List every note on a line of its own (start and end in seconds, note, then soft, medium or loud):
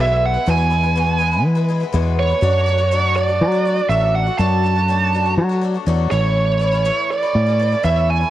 0.00 0.36 B1 loud
0.00 0.34 E2 medium
0.00 0.34 B2 medium
0.00 0.34 E3 medium
0.00 0.35 G#3 medium
0.00 0.34 B3 medium
0.00 0.33 E4 medium
0.00 0.24 E5 medium
0.26 0.49 F#5 medium
0.34 0.46 E3 soft
0.34 0.47 G#3 medium
0.34 0.47 B3 medium
0.34 0.46 E4 medium
0.46 0.71 E2 medium
0.46 1.44 E2 loud
0.46 0.71 B2 medium
0.46 0.69 E3 medium
0.46 0.70 G#3 medium
0.46 0.72 B3 loud
0.46 0.72 E4 medium
0.50 1.42 G#5 loud
0.70 0.83 E3 medium
0.70 0.83 G#3 medium
0.70 0.83 B3 medium
0.70 0.82 E4 medium
0.83 0.96 E3 soft
0.83 0.96 G#3 soft
0.83 0.96 B3 soft
0.83 0.95 E4 medium
0.96 1.20 E2 medium
0.96 1.20 B2 medium
0.96 1.18 E3 medium
0.96 1.19 G#3 medium
0.96 1.20 B3 medium
0.96 1.21 E4 medium
1.19 1.32 E3 medium
1.19 1.32 G#3 medium
1.19 1.32 B3 medium
1.19 1.30 E4 medium
1.32 1.57 E3 medium
1.32 1.56 G#3 medium
1.32 1.55 B3 medium
1.32 1.54 E4 medium
1.44 1.83 E3 loud
1.55 1.67 E3 medium
1.55 1.68 G#3 medium
1.55 1.69 B3 medium
1.55 1.68 E4 medium
1.69 1.81 E3 medium
1.69 1.81 G#3 medium
1.69 1.80 B3 medium
1.69 1.79 E4 medium
1.80 1.93 E3 medium
1.80 1.93 G#3 soft
1.80 1.93 B3 medium
1.80 1.93 E4 medium
1.93 2.30 E2 medium
1.93 2.32 E2 loud
1.93 2.30 B2 medium
1.93 2.30 E3 medium
1.93 2.30 G#3 loud
1.93 2.29 B3 medium
1.93 2.28 E4 medium
2.19 3.16 C#5 medium
2.29 2.41 E3 soft
2.29 2.42 G#3 soft
2.29 2.42 B3 medium
2.29 2.42 E4 medium
2.41 3.43 F#2 loud
2.41 2.65 F#3 medium
2.41 2.66 A3 medium
2.41 2.67 D4 loud
2.41 2.67 F#4 loud
2.66 2.79 F#3 medium
2.66 2.79 A3 medium
2.66 2.78 D4 medium
2.66 2.77 F#4 medium
2.78 2.91 A3 medium
2.78 2.91 D4 medium
2.78 2.91 F#4 medium
2.91 3.14 F#3 medium
2.91 3.15 A3 loud
2.91 3.16 D4 medium
2.91 3.17 F#4 medium
3.15 3.28 F#3 medium
3.15 3.28 A3 medium
3.15 3.28 D4 medium
3.15 3.27 F#4 medium
3.15 3.89 D5 medium
3.28 3.54 A3 soft
3.28 3.53 D4 medium
3.28 3.51 F#4 medium
3.41 3.80 F#3 loud
3.52 3.66 A3 medium
3.52 3.66 D4 medium
3.52 3.65 F#4 medium
3.65 3.78 F#3 medium
3.65 3.78 A3 medium
3.65 3.77 D4 medium
3.65 3.75 F#4 medium
3.76 3.89 A3 soft
3.76 3.90 D4 medium
3.76 3.89 F#4 medium
3.89 4.28 A1 loud
3.89 4.27 F#3 medium
3.89 4.27 A3 medium
3.89 4.27 D4 medium
3.89 4.25 F#4 medium
3.89 4.15 E5 medium
4.15 4.38 F#5 loud
4.26 4.38 A3 soft
4.26 4.38 D4 soft
4.26 4.39 F#4 medium
4.38 5.39 F#2 loud
4.38 4.62 F#3 medium
4.38 4.63 A3 medium
4.38 4.64 D4 loud
4.38 4.64 F#4 loud
4.38 5.33 A5 loud
4.64 4.76 F#3 medium
4.64 4.76 A3 medium
4.64 4.76 D4 medium
4.64 4.75 F#4 medium
4.76 4.88 A3 medium
4.76 4.89 D4 soft
4.76 4.88 F#4 medium
4.88 5.12 F#3 medium
4.88 5.13 A3 medium
4.88 5.14 D4 medium
4.88 5.14 F#4 medium
5.13 5.25 F#3 medium
5.13 5.26 A3 medium
5.13 5.26 D4 medium
5.13 5.25 F#4 medium
5.26 5.52 A3 medium
5.26 5.51 D4 medium
5.26 5.48 F#4 medium
5.38 5.76 F#3 medium
5.49 5.62 A3 medium
5.49 5.63 D4 medium
5.49 5.62 F#4 medium
5.61 5.74 F#3 medium
5.61 5.75 A3 medium
5.61 5.74 D4 medium
5.61 5.73 F#4 medium
5.74 5.86 A3 soft
5.74 5.87 D4 medium
5.74 5.87 F#4 medium
5.86 6.06 E2 loud
5.86 6.11 F#3 medium
5.86 6.11 A3 loud
5.86 6.12 D4 loud
5.86 6.12 F#4 medium
6.11 6.89 A1 loud
6.11 6.61 A2 medium
6.11 6.58 E3 medium
6.11 6.61 A3 medium
6.11 6.61 C#4 medium
6.11 6.62 E4 medium
6.11 7.11 C#5 medium
6.59 6.72 E3 medium
6.59 6.73 A3 medium
6.59 6.73 C#4 medium
6.59 6.71 E4 medium
6.73 6.84 A3 medium
6.73 6.85 C#4 medium
6.73 6.85 E4 medium
6.85 7.10 A2 medium
6.85 7.09 E3 loud
6.85 7.10 A3 medium
6.85 7.10 C#4 medium
6.85 7.10 E4 medium
7.10 7.22 E3 medium
7.10 7.23 A3 medium
7.10 7.23 C#4 medium
7.10 7.22 E4 medium
7.10 7.84 D5 loud
7.23 7.49 A3 soft
7.23 7.47 C#4 medium
7.23 7.45 E4 medium
7.35 7.74 A2 medium
7.46 7.59 A3 medium
7.46 7.60 C#4 medium
7.46 7.59 E4 medium
7.59 7.72 E3 medium
7.59 7.72 A3 medium
7.59 7.72 C#4 medium
7.59 7.71 E4 medium
7.72 7.83 A3 soft
7.72 7.83 C#4 soft
7.72 7.84 E4 medium
7.83 8.23 E2 loud
7.83 8.20 A2 medium
7.83 8.21 E3 medium
7.83 8.21 A3 medium
7.83 8.21 C#4 medium
7.83 8.19 E4 medium
7.83 8.10 E5 medium
8.10 8.30 G#5 loud
8.21 8.30 A3 soft
8.21 8.30 C#4 soft
8.21 8.30 E4 soft